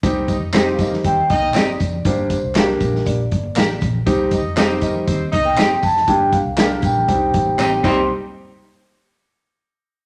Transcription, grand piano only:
X:1
M:4/4
L:1/8
Q:1/4=119
K:Cdor
V:1 name="Grand piano"
[G,CEG] z [G,CEG]2 z4 | [G,B,DG] z [G,B,D^FG]2 z4 | [G,CEG] z [G,CEFG]2 z4 | [G,B,DG] z [G,B,DAB]2 [G,CDEG]3 [G,CEG] |
z8 |]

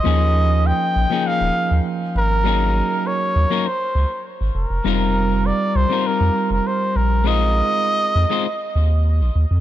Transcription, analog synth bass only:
X:1
M:4/4
L:1/16
Q:1/4=100
K:Ebmix
V:1 name="Analog synth bass" clef=bass
E,,4 z2 B,,, z2 E,,, z E,, z2 A,,,2- | A,,,2 z4 E,, z3 D,, z2 A,,, F,,, F,,, | F,,,4 z2 C,, z2 F,, z F,,, z2 B,,,2- | B,,,2 z4 F,, z3 E,,3 B,,, E,, F,, |]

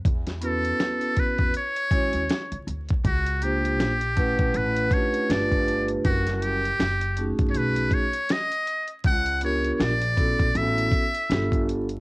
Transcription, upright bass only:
X:1
M:4/4
L:1/16
Q:"Swing 16ths" 1/4=80
K:E
V:1 name="Upright bass" clef=bass
E,,4 z3 E,, z2 D,, D,, z C,, =D,,2 | C,,4 _B,,,3 B,,, A,,,2 z2 =G,,,4 | F,,,4 F,,,3 =G,,, B,,,2 z6 | C,,4 ^A,,,3 A,,, =A,,,2 z2 =G,,,4 |]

